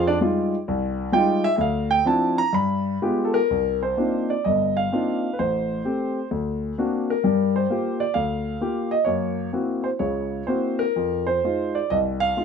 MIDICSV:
0, 0, Header, 1, 2, 480
1, 0, Start_track
1, 0, Key_signature, -3, "minor"
1, 0, Tempo, 460476
1, 1661, Time_signature, 4, 2, 24, 8
1, 2148, Tempo, 481541
1, 4548, Tempo, 461184
1, 9828, Tempo, 472441
1, 12778, End_track
2, 0, Start_track
2, 0, Title_t, "Grand piano"
2, 0, Program_c, 0, 0
2, 0, Note_on_c, 0, 41, 74
2, 78, Note_on_c, 0, 74, 95
2, 81, Note_on_c, 0, 62, 78
2, 161, Note_off_c, 0, 41, 0
2, 169, Note_off_c, 0, 74, 0
2, 171, Note_off_c, 0, 62, 0
2, 219, Note_on_c, 0, 55, 62
2, 219, Note_on_c, 0, 56, 52
2, 225, Note_on_c, 0, 63, 50
2, 229, Note_on_c, 0, 65, 64
2, 560, Note_off_c, 0, 55, 0
2, 560, Note_off_c, 0, 56, 0
2, 563, Note_off_c, 0, 63, 0
2, 565, Note_off_c, 0, 65, 0
2, 710, Note_on_c, 0, 36, 69
2, 1122, Note_off_c, 0, 36, 0
2, 1171, Note_on_c, 0, 55, 65
2, 1175, Note_on_c, 0, 56, 56
2, 1177, Note_on_c, 0, 63, 57
2, 1181, Note_on_c, 0, 79, 95
2, 1183, Note_on_c, 0, 65, 72
2, 1493, Note_off_c, 0, 79, 0
2, 1504, Note_on_c, 0, 76, 100
2, 1513, Note_off_c, 0, 55, 0
2, 1516, Note_off_c, 0, 56, 0
2, 1517, Note_off_c, 0, 63, 0
2, 1520, Note_off_c, 0, 65, 0
2, 1611, Note_off_c, 0, 76, 0
2, 1627, Note_on_c, 0, 76, 59
2, 1647, Note_on_c, 0, 38, 71
2, 1665, Note_off_c, 0, 76, 0
2, 1676, Note_on_c, 0, 77, 79
2, 1986, Note_off_c, 0, 77, 0
2, 1987, Note_on_c, 0, 79, 99
2, 2077, Note_off_c, 0, 38, 0
2, 2141, Note_on_c, 0, 53, 57
2, 2141, Note_on_c, 0, 60, 57
2, 2142, Note_off_c, 0, 79, 0
2, 2147, Note_on_c, 0, 62, 50
2, 2150, Note_on_c, 0, 64, 63
2, 2159, Note_on_c, 0, 81, 86
2, 2461, Note_off_c, 0, 81, 0
2, 2468, Note_on_c, 0, 82, 104
2, 2477, Note_off_c, 0, 53, 0
2, 2477, Note_off_c, 0, 60, 0
2, 2480, Note_off_c, 0, 62, 0
2, 2481, Note_off_c, 0, 64, 0
2, 2613, Note_on_c, 0, 43, 77
2, 2617, Note_off_c, 0, 82, 0
2, 2630, Note_on_c, 0, 83, 88
2, 3041, Note_off_c, 0, 43, 0
2, 3081, Note_off_c, 0, 83, 0
2, 3104, Note_on_c, 0, 59, 57
2, 3105, Note_on_c, 0, 56, 65
2, 3106, Note_on_c, 0, 65, 59
2, 3107, Note_on_c, 0, 67, 66
2, 3331, Note_on_c, 0, 69, 68
2, 3422, Note_on_c, 0, 70, 99
2, 3436, Note_off_c, 0, 69, 0
2, 3457, Note_off_c, 0, 56, 0
2, 3457, Note_off_c, 0, 59, 0
2, 3458, Note_off_c, 0, 65, 0
2, 3458, Note_off_c, 0, 67, 0
2, 3588, Note_on_c, 0, 36, 57
2, 3879, Note_off_c, 0, 70, 0
2, 3907, Note_on_c, 0, 72, 72
2, 4010, Note_off_c, 0, 36, 0
2, 4052, Note_on_c, 0, 58, 45
2, 4059, Note_on_c, 0, 60, 40
2, 4059, Note_on_c, 0, 62, 41
2, 4061, Note_on_c, 0, 63, 39
2, 4062, Note_on_c, 0, 65, 46
2, 4354, Note_off_c, 0, 72, 0
2, 4380, Note_on_c, 0, 74, 73
2, 4397, Note_off_c, 0, 58, 0
2, 4401, Note_off_c, 0, 60, 0
2, 4401, Note_off_c, 0, 62, 0
2, 4402, Note_off_c, 0, 63, 0
2, 4402, Note_off_c, 0, 65, 0
2, 4525, Note_on_c, 0, 75, 76
2, 4536, Note_on_c, 0, 43, 60
2, 4542, Note_on_c, 0, 31, 55
2, 4545, Note_off_c, 0, 74, 0
2, 4839, Note_off_c, 0, 75, 0
2, 4859, Note_on_c, 0, 77, 87
2, 4963, Note_off_c, 0, 43, 0
2, 4966, Note_off_c, 0, 31, 0
2, 5020, Note_on_c, 0, 60, 45
2, 5023, Note_on_c, 0, 58, 46
2, 5026, Note_on_c, 0, 62, 44
2, 5027, Note_on_c, 0, 63, 46
2, 5033, Note_on_c, 0, 65, 53
2, 5370, Note_off_c, 0, 60, 0
2, 5371, Note_off_c, 0, 58, 0
2, 5372, Note_off_c, 0, 62, 0
2, 5373, Note_off_c, 0, 63, 0
2, 5376, Note_off_c, 0, 65, 0
2, 5447, Note_on_c, 0, 71, 57
2, 5482, Note_off_c, 0, 77, 0
2, 5506, Note_off_c, 0, 71, 0
2, 5507, Note_on_c, 0, 72, 79
2, 5511, Note_on_c, 0, 33, 57
2, 5933, Note_off_c, 0, 33, 0
2, 5980, Note_on_c, 0, 57, 45
2, 5987, Note_on_c, 0, 67, 50
2, 5990, Note_on_c, 0, 60, 44
2, 6327, Note_off_c, 0, 57, 0
2, 6331, Note_off_c, 0, 67, 0
2, 6332, Note_off_c, 0, 60, 0
2, 6430, Note_off_c, 0, 72, 0
2, 6467, Note_on_c, 0, 38, 65
2, 6890, Note_off_c, 0, 38, 0
2, 6955, Note_on_c, 0, 58, 53
2, 6959, Note_on_c, 0, 62, 49
2, 6960, Note_on_c, 0, 60, 42
2, 6964, Note_on_c, 0, 66, 58
2, 7290, Note_on_c, 0, 70, 77
2, 7299, Note_off_c, 0, 58, 0
2, 7301, Note_off_c, 0, 60, 0
2, 7301, Note_off_c, 0, 62, 0
2, 7303, Note_off_c, 0, 66, 0
2, 7430, Note_on_c, 0, 43, 61
2, 7434, Note_on_c, 0, 55, 63
2, 7733, Note_off_c, 0, 70, 0
2, 7764, Note_on_c, 0, 72, 75
2, 7850, Note_off_c, 0, 43, 0
2, 7852, Note_off_c, 0, 55, 0
2, 7909, Note_on_c, 0, 58, 50
2, 7918, Note_on_c, 0, 65, 43
2, 7923, Note_on_c, 0, 67, 51
2, 8226, Note_on_c, 0, 74, 80
2, 8247, Note_off_c, 0, 58, 0
2, 8250, Note_off_c, 0, 72, 0
2, 8252, Note_off_c, 0, 65, 0
2, 8254, Note_off_c, 0, 67, 0
2, 8370, Note_on_c, 0, 77, 90
2, 8374, Note_off_c, 0, 74, 0
2, 8384, Note_on_c, 0, 38, 57
2, 8800, Note_off_c, 0, 38, 0
2, 8857, Note_on_c, 0, 58, 50
2, 8863, Note_on_c, 0, 65, 43
2, 8867, Note_on_c, 0, 67, 56
2, 9173, Note_on_c, 0, 75, 87
2, 9199, Note_off_c, 0, 58, 0
2, 9201, Note_off_c, 0, 77, 0
2, 9202, Note_off_c, 0, 65, 0
2, 9204, Note_off_c, 0, 67, 0
2, 9312, Note_on_c, 0, 73, 76
2, 9326, Note_off_c, 0, 75, 0
2, 9326, Note_on_c, 0, 58, 53
2, 9329, Note_on_c, 0, 42, 61
2, 9755, Note_off_c, 0, 58, 0
2, 9757, Note_off_c, 0, 42, 0
2, 9777, Note_off_c, 0, 73, 0
2, 9815, Note_on_c, 0, 58, 45
2, 9815, Note_on_c, 0, 60, 44
2, 9821, Note_on_c, 0, 64, 42
2, 9822, Note_on_c, 0, 66, 53
2, 10128, Note_on_c, 0, 72, 67
2, 10157, Note_off_c, 0, 58, 0
2, 10157, Note_off_c, 0, 60, 0
2, 10160, Note_off_c, 0, 64, 0
2, 10161, Note_off_c, 0, 66, 0
2, 10179, Note_off_c, 0, 72, 0
2, 10286, Note_on_c, 0, 73, 68
2, 10291, Note_on_c, 0, 49, 56
2, 10292, Note_on_c, 0, 37, 56
2, 10718, Note_off_c, 0, 49, 0
2, 10719, Note_off_c, 0, 37, 0
2, 10745, Note_off_c, 0, 73, 0
2, 10770, Note_on_c, 0, 72, 70
2, 10780, Note_on_c, 0, 58, 46
2, 10781, Note_on_c, 0, 60, 44
2, 10784, Note_on_c, 0, 64, 43
2, 10790, Note_on_c, 0, 66, 48
2, 11096, Note_on_c, 0, 70, 89
2, 11118, Note_off_c, 0, 72, 0
2, 11129, Note_off_c, 0, 58, 0
2, 11129, Note_off_c, 0, 60, 0
2, 11131, Note_off_c, 0, 64, 0
2, 11134, Note_off_c, 0, 66, 0
2, 11269, Note_on_c, 0, 41, 55
2, 11558, Note_off_c, 0, 70, 0
2, 11580, Note_on_c, 0, 72, 83
2, 11695, Note_off_c, 0, 41, 0
2, 11759, Note_on_c, 0, 56, 46
2, 11764, Note_on_c, 0, 63, 40
2, 11766, Note_on_c, 0, 65, 50
2, 12072, Note_on_c, 0, 74, 74
2, 12088, Note_off_c, 0, 72, 0
2, 12099, Note_off_c, 0, 56, 0
2, 12101, Note_off_c, 0, 63, 0
2, 12102, Note_off_c, 0, 65, 0
2, 12227, Note_on_c, 0, 75, 89
2, 12235, Note_on_c, 0, 36, 60
2, 12237, Note_off_c, 0, 74, 0
2, 12300, Note_off_c, 0, 75, 0
2, 12533, Note_on_c, 0, 77, 110
2, 12646, Note_off_c, 0, 36, 0
2, 12702, Note_on_c, 0, 56, 49
2, 12704, Note_on_c, 0, 63, 45
2, 12710, Note_on_c, 0, 65, 56
2, 12778, Note_off_c, 0, 56, 0
2, 12778, Note_off_c, 0, 63, 0
2, 12778, Note_off_c, 0, 65, 0
2, 12778, Note_off_c, 0, 77, 0
2, 12778, End_track
0, 0, End_of_file